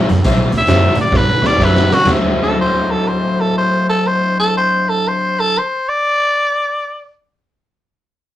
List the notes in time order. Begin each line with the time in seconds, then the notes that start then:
Already playing: D3
0.09 F#2, muted overdriven electric guitar stroke, snare, closed hi-hat
0.24 C2 D3 F#3 C4 E4, kick, closed hi-hat
0.52 D2, muted overdriven electric guitar stroke, snare, closed hi-hat
0.58 E5
0.67 F#2 D3 F#3 C4 E4, snare, closed hi-hat
0.95 A2, muted overdriven electric guitar stroke, closed hi-hat
1.01 D5
1.12 G2, muted overdriven electric guitar stroke, kick, snare
1.16 B4
1.42 D2, muted overdriven electric guitar stroke, snare
1.46 D5
1.58 F#2 D3 F#3 C4 E4, kick, snare
1.64 B4
1.75 snare
1.89 muted overdriven electric guitar stroke, snare
1.94 F#4
2.05 D2 D3 F#3 C4, snare, floor tom, crash
2.10 E4
2.43 A4
2.61 C5
2.91 A4
3.08 C5
3.40 A4
3.57 C5
3.89 A4
4.07 C5
4.40 A4
4.57 C5
4.89 A4
5.08 C5
5.40 A4
5.58 C5
5.89 D5